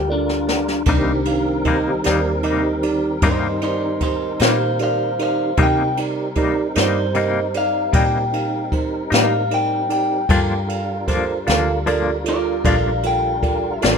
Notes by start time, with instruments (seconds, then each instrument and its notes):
Already playing: fingered electric bass D2, tonewheel organ G3 D4 F4 A#4
0.08 clean electric guitar D4, tine electric piano F4 A4 A#4 D5
0.29 snare
0.47 tine electric piano F4 A4 A#4 D5, snare
0.68 snare
0.85 fingered electric bass C2, clean electric guitar C3 G3 A#3 D#4, tonewheel organ D#3 G3 C4 A#4, tine electric piano D#4 G4 A#4 D5, kick, ride
1.25 tine electric piano D#4 G4 A#4 F5, ride
1.64 clean electric guitar C3 G3 A#3 D#4, tine electric piano D#4 G4 A#4 D#5, kick, ride
2.04 fingered electric bass D#2, clean electric guitar G3 A#3 D#4, tine electric piano D#4 G4 A#4 D5, snare, ride
2.43 clean electric guitar C3 G3 A#3 D#4, tine electric piano D#4 G4 A#4 D#5, ride
2.82 tine electric piano D#4 G4 A#4 D5, ride
3.22 fingered electric bass G2, clean electric guitar C3 G3 A#3 D#4 C5, tine electric piano D#4 G4 A#4 D5, kick, ride
3.61 tine electric piano D#4 G4 A#4 D5, clean electric guitar D#4 C5, ride
4.00 tine electric piano D#4 G4 A#4 D#5, clean electric guitar D#4 C5, kick, ride
4.39 fingered electric bass A#2, clean electric guitar G3 A#3 D#4 C5 F5, tine electric piano D#4 G4 A#4 C5, snare, ride
4.79 tine electric piano D#4 G4 A#4 D5, clean electric guitar C5, ride
4.83 clean electric guitar F5
5.19 tine electric piano D#4 G4 A#4 D5, clean electric guitar C5 F5, ride
5.57 clean electric guitar C3 G3 A#3 D#4, fingered electric bass C3, tonewheel organ G3 C4 D#4 A#4, tine electric piano D#4 G4 A#4 D#5, kick, ride
5.63 clean electric guitar G5
5.97 tine electric piano D#4 G4 A#4 D5, ride
6.35 clean electric guitar C3 G3 A#3 D#4, tine electric piano D#4 G4 A#4 D5, kick, ride
6.74 fingered electric bass G2, clean electric guitar G3 A#3 D#4, tine electric piano D#4 G4 A#4 D5, snare, ride
6.79 clean electric guitar C5
7.14 clean electric guitar C3 G3 A#3 D#4, tine electric piano D#4 G4 A#4 D#5, ride
7.54 tine electric piano D#4 G4 A#4 D5, clean electric guitar F5, ride
7.93 fingered electric bass A#2, clean electric guitar C3 G3 A#3 D#4 G5, tine electric piano D#4 G4 A#4 D5, kick, ride
8.33 tine electric piano D#4 G4 A#4 F5, ride
8.72 tine electric piano D#4 G4 A#4 C5, kick, ride
9.10 fingered electric bass A2, clean electric guitar G3 A#3 D#4 F5, tine electric piano D#4 G4 A#4 D5, snare, ride
9.50 tine electric piano D#4 G4 A#4 D5, clean electric guitar G5, ride
9.89 tine electric piano D#4 G4 A#4 D5, clean electric guitar G5, ride
10.29 fingered electric bass G2, clean electric guitar G2 F3 A#3 D4, tonewheel organ G3 D4 F4 A#4, tine electric piano F4 A4 A#4 D5, kick, ride
10.67 tine electric piano F4 A4 A#4 F5, ride
11.07 clean electric guitar G2 F3 A#3 D4, tine electric piano F4 A4 A#4 C5, kick, snare, ride
11.46 fingered electric bass D2, clean electric guitar F3 A#3 D4, tine electric piano F4 A4 A#4 F5, snare, ride
11.86 clean electric guitar G2 F3 A#3 D4, tine electric piano F4 A4 A#4 D5, ride
12.24 tine electric piano F4 A4 A#4 D5, ride
12.28 clean electric guitar F4 D5
12.64 fingered electric bass A#1, clean electric guitar G2 F3 A#3 D4 D5 F5, tine electric piano F4 A4 A#4 D5, kick, ride
13.03 tine electric piano F4 A4 A#4 F5, clean electric guitar G5, ride
13.42 tine electric piano F4 A4 A#4 D5, kick, ride
13.81 fingered electric bass A1, clean electric guitar F3 A#3 D4, tine electric piano F4 A4 A#4 D5, snare, ride